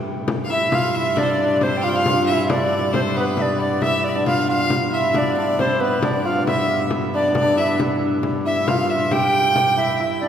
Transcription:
Already playing: viola da gamba G2, hammered dulcimer D4 E4 G4
0.28 frame drum
0.44 fiddle F5
0.50 hammered dulcimer E4, fiddle E5, recorder E5
0.71 hammered dulcimer F4, fiddle F5, recorder F5, frame drum
0.94 hammered dulcimer E4, fiddle E5, recorder E5
1.16 hammered dulcimer D4, fiddle D5, recorder D5, frame drum
1.23 fiddle C5
1.30 fiddle D5
1.39 hammered dulcimer D4
1.60 hammered dulcimer C4, fiddle C5, recorder C5, frame drum
1.77 recorder G5
1.82 hammered dulcimer F4, fiddle F5, recorder F5
1.89 fiddle G5
1.96 fiddle F5
2.06 hammered dulcimer F4, frame drum
2.26 hammered dulcimer E4, fiddle E5, recorder F5
2.33 recorder E5
2.49 hammered dulcimer D4, fiddle D5, recorder D5, frame drum
2.93 hammered dulcimer C4, fiddle C5, recorder C5, frame drum
3.16 hammered dulcimer B3, fiddle B4, recorder B4
3.37 hammered dulcimer D4, recorder E5, frame drum
3.42 recorder D5
3.60 fiddle D5, recorder D5
3.82 hammered dulcimer E4, fiddle E5, recorder E5, frame drum
4.04 recorder D5, fiddle D5
4.09 recorder E5
4.16 hammered dulcimer D4, recorder D5
4.26 hammered dulcimer F4, recorder F5, fiddle F5, frame drum
4.49 hammered dulcimer F4, fiddle F5, recorder F5
4.70 frame drum
4.92 hammered dulcimer E4, recorder E5, fiddle E5, frame drum
5.14 viola da gamba G2, hammered dulcimer D4, fiddle D5, recorder D5 E5, frame drum
5.37 hammered dulcimer D4, fiddle D5
5.58 hammered dulcimer C4, recorder C5, fiddle C5, frame drum
5.80 hammered dulcimer B3, recorder B4, fiddle B4
6.02 hammered dulcimer D4, recorder D5, fiddle D5, frame drum
6.25 hammered dulcimer F4, recorder F5
6.47 hammered dulcimer E4, recorder E5, fiddle E5, frame drum
6.90 frame drum
7.14 hammered dulcimer D4, fiddle D5, recorder D5
7.28 hammered dulcimer D4
7.35 fiddle D5, frame drum
7.42 hammered dulcimer D4
7.57 hammered dulcimer E4, fiddle E5, recorder E5
7.80 frame drum
8.23 frame drum
8.45 hammered dulcimer E4, recorder E5, fiddle E5
8.67 hammered dulcimer F4, recorder F5, fiddle F5, frame drum
8.90 fiddle E5, recorder E5
9.11 hammered dulcimer G4, recorder G5, fiddle G5, frame drum
9.56 frame drum
9.77 hammered dulcimer E4, recorder E5, frame drum
10.00 hammered dulcimer E4
10.21 hammered dulcimer D4, recorder D5, frame drum

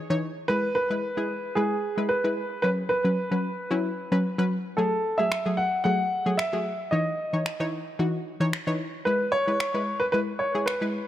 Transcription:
Already playing: grand piano G#4
0.10 synth pluck E3 D#4 C#5
0.48 synth pluck G#3 E4 B4, grand piano B4
0.75 grand piano B4
0.90 synth pluck G#3 E4 B4
1.17 synth pluck G#3 E4 G#4
1.55 synth pluck G#3 E4 B4, grand piano G#4
1.97 synth pluck G#3 E4 B4
2.09 grand piano B4
2.24 synth pluck G#3 E4 B4
2.62 synth pluck F#3 C#4 B4, grand piano B4
2.89 grand piano B4
3.04 synth pluck F#3 C#4 B4
3.31 synth pluck F#3 C#4 B4
3.71 synth pluck F#3 C#4 E4
4.12 synth pluck F#3 C#4 B4
4.38 synth pluck F#3 C#4 B4
4.77 synth pluck F#3 A3 G#4, grand piano A4
5.18 synth pluck F#3 A3 G#4, grand piano E5
5.32 finger snap
5.46 synth pluck F#3 A3 G#4
5.57 grand piano F#5
5.84 synth pluck F#3 A3 G#4, grand piano F#5
6.26 synth pluck F#3 A3 G#4
6.37 grand piano E5, finger snap
6.53 synth pluck F#3 A3 G#4
6.91 synth pluck E3 D#4 C#5, grand piano D#5
7.33 synth pluck E3 D#4 C#5
7.46 finger snap
7.60 synth pluck E3 D#4 C#5
7.99 synth pluck E3 D#4 F#4
8.40 synth pluck E3 D#4 C#5
8.53 finger snap
8.67 synth pluck E3 D#4 C#5
9.05 synth pluck G#3 E4 B4, grand piano B4
9.32 grand piano C#5
9.47 synth pluck G#3 E4 B4
9.60 finger snap
9.74 synth pluck G#3 E4 B4
10.00 grand piano B4
10.12 synth pluck G#3 E4 B4, grand piano B4
10.39 grand piano C#5
10.55 synth pluck G#3 E4 G#4
10.66 grand piano B4, finger snap
10.81 synth pluck G#3 E4 B4

